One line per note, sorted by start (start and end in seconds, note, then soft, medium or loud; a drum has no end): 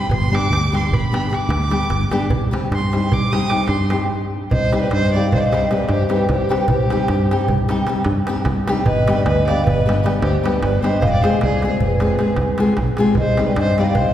0.00 0.10 B5 medium
0.09 0.34 G1 loud
0.09 0.36 C6 medium
0.09 darbuka dum loud
0.24 darbuka tek soft
0.31 0.46 G3 medium
0.31 0.46 B3 medium
0.31 0.47 D4 medium
0.31 0.47 G4 medium
0.31 0.75 D6 loud
0.35 darbuka tek medium
0.44 darbuka tek soft
0.50 0.75 D2 medium
0.50 darbuka tek medium
0.72 0.87 G3 medium
0.72 0.87 B3 medium
0.72 0.87 D4 medium
0.72 0.88 G4 medium
0.72 darbuka tek medium
0.77 0.95 C6 medium
0.85 darbuka tek soft
0.91 1.04 G1 medium
0.91 1.36 B5 medium
0.91 darbuka dum medium
1.12 1.26 G3 medium
1.12 1.26 B3 medium
1.12 1.27 D4 medium
1.12 1.27 G4 medium
1.12 darbuka tek medium
1.30 1.44 G3 medium
1.30 1.44 B3 medium
1.30 1.45 D4 medium
1.30 1.45 G4 medium
1.30 darbuka tek medium
1.34 2.33 D6 medium
1.49 1.73 D2 loud
1.49 darbuka tek medium
1.60 darbuka tek soft
1.70 1.85 G3 medium
1.70 1.85 B3 medium
1.70 1.86 D4 medium
1.70 1.86 G4 medium
1.70 darbuka tek medium
1.90 2.03 G1 medium
1.90 darbuka tek medium
2.01 darbuka tek soft
2.11 2.26 G3 medium
2.11 2.26 B3 medium
2.11 2.26 D4 medium
2.11 2.27 G4 loud
2.11 darbuka tek medium
2.30 2.55 C2 medium
2.30 darbuka dum loud
2.41 darbuka tek soft
2.51 2.67 G3 medium
2.51 2.67 C4 medium
2.51 2.67 D#4 medium
2.51 2.67 G4 medium
2.51 darbuka tek medium
2.71 2.96 G2 medium
2.71 2.94 C6 medium
2.71 darbuka tek medium
2.82 darbuka tek soft
2.92 3.07 G3 medium
2.92 3.07 C4 medium
2.92 3.08 D#4 medium
2.92 3.08 G4 medium
2.92 darbuka tek medium
2.97 3.15 C6 medium
3.03 darbuka tek soft
3.12 3.25 C2 medium
3.12 3.34 D6 medium
3.12 darbuka dum medium
3.23 darbuka tek soft
3.32 3.47 G3 medium
3.32 3.47 C4 medium
3.32 3.47 D#4 medium
3.32 3.47 G4 medium
3.32 3.51 D#6 loud
3.32 darbuka tek medium
3.49 3.64 G3 medium
3.49 3.65 C4 medium
3.49 3.65 D#4 medium
3.49 3.65 G4 medium
3.49 3.68 D6 medium
3.49 darbuka tek medium
3.59 darbuka tek soft
3.68 3.94 G2 loud
3.68 3.90 C6 medium
3.68 darbuka tek medium
3.79 darbuka tek soft
3.90 4.06 G3 medium
3.90 4.06 C4 medium
3.90 4.06 D#4 medium
3.90 4.07 G4 medium
3.90 darbuka tek medium
4.01 darbuka tek soft
4.51 4.76 C2 medium
4.51 4.78 C5 medium
4.51 4.80 D#5 loud
4.51 darbuka dum medium
4.72 4.87 G3 medium
4.72 4.87 C4 medium
4.72 4.87 D#4 medium
4.72 4.88 G4 medium
4.72 darbuka tek medium
4.78 4.92 B4 medium
4.78 4.92 D5 medium
4.91 5.17 G2 medium
4.91 5.13 C5 loud
4.91 5.15 D#5 medium
4.91 darbuka tek medium
5.14 5.28 G3 medium
5.14 5.28 C4 medium
5.14 5.29 D#4 medium
5.14 5.29 G4 medium
5.14 5.31 D5 medium
5.32 5.67 C2 medium
5.32 5.40 C5 medium
5.32 5.39 D#5 loud
5.32 darbuka dum medium
5.40 5.46 D5 medium
5.40 5.46 F5 medium
5.40 darbuka tek soft
5.46 5.70 C5 medium
5.46 5.69 D#5 loud
5.52 5.66 G3 medium
5.52 5.66 C4 medium
5.52 5.67 D#4 medium
5.52 5.67 G4 medium
5.52 darbuka tek medium
5.71 5.84 G3 medium
5.71 5.84 C4 medium
5.71 5.85 D#4 medium
5.71 5.85 G4 medium
5.71 5.88 B4 medium
5.71 5.90 D5 medium
5.71 darbuka tek medium
5.80 darbuka tek soft
5.89 6.02 G2 loud
5.89 6.10 G4 medium
5.89 6.12 C5 medium
5.89 darbuka tek medium
6.09 6.24 G3 medium
6.09 6.24 C4 medium
6.09 6.24 D#4 medium
6.09 6.25 G4 medium
6.09 6.30 B4 loud
6.09 darbuka tek medium
6.14 6.29 G4 medium
6.29 6.42 C2 loud
6.29 6.57 G4 medium
6.29 6.58 C5 medium
6.29 darbuka tek medium
6.41 darbuka tek soft
6.49 6.64 G3 medium
6.49 6.64 C4 medium
6.49 6.64 D#4 medium
6.49 6.65 G4 medium
6.49 darbuka tek medium
6.59 6.69 G4 medium
6.59 6.71 B4 medium
6.59 darbuka tek soft
6.68 6.94 C2 loud
6.68 7.46 G4 medium
6.68 darbuka dum medium
6.72 7.47 C5 medium
6.90 7.05 G3 medium
6.90 7.05 C4 medium
6.90 7.06 D#4 medium
6.90 7.06 G4 medium
6.90 darbuka tek medium
7.08 7.34 G2 medium
7.08 darbuka tek medium
7.31 7.45 G3 medium
7.31 7.46 C4 medium
7.31 7.46 D#4 medium
7.31 7.46 G4 medium
7.31 darbuka tek medium
7.48 7.83 C2 medium
7.48 darbuka dum medium
7.58 darbuka tek soft
7.68 7.83 G3 medium
7.68 7.83 C4 medium
7.68 7.84 D#4 medium
7.68 7.84 G4 medium
7.68 darbuka tek medium
7.87 8.01 G3 medium
7.87 8.01 C4 medium
7.87 8.02 D#4 medium
7.87 8.02 G4 medium
7.87 darbuka tek medium
7.97 darbuka tek soft
8.05 8.19 G2 loud
8.05 darbuka tek medium
8.27 8.42 G3 medium
8.27 8.42 C4 medium
8.27 8.42 D#4 medium
8.27 8.42 G4 medium
8.27 darbuka tek medium
8.45 8.59 C2 loud
8.45 darbuka tek medium
8.56 darbuka tek soft
8.68 8.82 G3 medium
8.68 8.82 C4 medium
8.68 8.82 D#4 medium
8.68 8.82 G4 medium
8.68 darbuka tek medium
8.77 darbuka tek soft
8.86 9.10 G1 loud
8.86 9.13 B4 loud
8.86 9.15 D#5 loud
8.86 darbuka dum loud
9.07 9.21 G3 medium
9.07 9.22 B3 medium
9.07 9.22 D4 medium
9.07 9.23 G4 medium
9.07 darbuka tek medium
9.16 9.26 B4 medium
9.16 9.26 D5 medium
9.26 9.50 D2 medium
9.26 9.47 B4 loud
9.26 9.48 D#5 loud
9.26 darbuka tek medium
9.48 9.62 G3 medium
9.48 9.62 B3 medium
9.48 9.63 D4 medium
9.48 9.63 G4 medium
9.48 9.65 D5 medium
9.48 9.67 F5 loud
9.48 darbuka tek medium
9.67 10.00 G1 medium
9.67 10.02 B4 medium
9.67 10.06 D#5 loud
9.67 darbuka dum medium
9.79 darbuka tek soft
9.86 10.00 G3 medium
9.86 10.00 B3 medium
9.86 10.00 D4 medium
9.86 10.00 G4 medium
9.86 darbuka tek medium
10.03 10.17 G3 medium
10.03 10.17 B3 medium
10.03 10.18 D4 medium
10.03 10.18 G4 medium
10.03 10.12 B4 medium
10.03 10.11 D5 medium
10.03 darbuka tek medium
10.14 darbuka tek soft
10.21 10.35 D2 loud
10.21 10.42 G4 medium
10.21 10.44 C5 medium
10.21 darbuka tek medium
10.43 10.57 G3 medium
10.43 10.58 B3 medium
10.43 10.58 D4 medium
10.43 10.60 G4 medium
10.43 10.58 G4 medium
10.43 10.63 B4 medium
10.43 darbuka tek medium
10.61 10.75 G1 loud
10.61 10.82 B4 medium
10.61 10.85 D5 loud
10.61 darbuka tek medium
10.74 darbuka tek soft
10.82 10.97 G3 medium
10.82 10.98 B3 medium
10.82 10.98 D4 medium
10.82 10.98 G4 medium
10.82 11.00 C5 medium
10.82 11.03 D#5 medium
10.82 darbuka tek medium
10.93 darbuka tek soft
11.01 11.27 F1 medium
11.01 11.06 C5 medium
11.01 11.07 F5 loud
11.01 darbuka dum loud
11.06 11.12 D#5 medium
11.06 11.13 G5 loud
11.12 11.23 D5 loud
11.12 11.24 F5 loud
11.23 11.37 G#3 medium
11.23 11.38 C4 medium
11.23 11.38 F4 medium
11.23 11.38 G#4 medium
11.23 11.41 C5 medium
11.23 11.42 D#5 medium
11.23 darbuka tek medium
11.34 darbuka tek soft
11.41 11.67 C2 loud
11.41 11.63 G#4 loud
11.41 11.63 D5 loud
11.41 darbuka tek medium
11.53 darbuka tek soft
11.62 11.77 G#3 medium
11.62 11.78 C4 medium
11.62 11.78 F4 medium
11.62 11.78 G#4 medium
11.62 11.82 G#4 medium
11.62 11.84 C5 medium
11.62 darbuka tek medium
11.72 darbuka tek soft
11.80 12.15 F1 medium
11.80 12.56 G#4 medium
11.80 12.56 B4 medium
11.80 darbuka dum medium
11.91 darbuka tek soft
12.00 12.15 G#3 medium
12.00 12.15 C4 medium
12.00 12.15 F4 medium
12.00 12.16 G#4 medium
12.00 darbuka tek medium
12.11 darbuka tek soft
12.18 12.33 G#3 medium
12.18 12.33 C4 medium
12.18 12.33 F4 medium
12.18 12.33 G#4 medium
12.18 darbuka tek medium
12.36 12.50 C2 loud
12.36 darbuka tek medium
12.48 darbuka tek soft
12.58 12.73 G#3 medium
12.58 12.73 C4 medium
12.58 12.73 F4 medium
12.58 12.73 G#4 medium
12.58 darbuka tek medium
12.67 darbuka tek soft
12.77 12.91 B1 loud
12.77 darbuka tek medium
12.77 darbuka dum medium
12.88 darbuka tek soft
12.97 13.13 G#3 medium
12.97 13.13 C4 medium
12.97 13.13 F4 medium
12.97 13.13 G#4 loud
12.97 darbuka tek medium
13.06 darbuka tek soft
13.15 13.41 C2 loud
13.15 13.44 D#5 loud
13.15 darbuka dum medium
13.20 13.45 C5 medium
13.37 13.52 G3 medium
13.37 13.52 C4 medium
13.37 13.53 D#4 medium
13.37 13.53 G4 medium
13.37 darbuka tek medium
13.46 13.57 B4 medium
13.46 13.58 D5 medium
13.56 13.81 G2 medium
13.56 13.78 C5 loud
13.56 13.78 D#5 loud
13.56 darbuka tek medium
13.78 13.92 G3 medium
13.78 13.93 C4 medium
13.78 13.93 D#4 medium
13.78 13.93 G4 medium
13.78 13.83 D5 medium
13.78 13.83 F5 loud
13.78 darbuka tek medium
13.82 13.88 D#5 medium
13.82 13.87 G5 medium
13.89 13.97 D5 medium
13.89 13.98 F5 loud
13.95 14.14 C2 medium
13.95 14.14 C5 medium
13.95 14.14 D#5 loud
13.95 darbuka dum medium
14.06 darbuka tek soft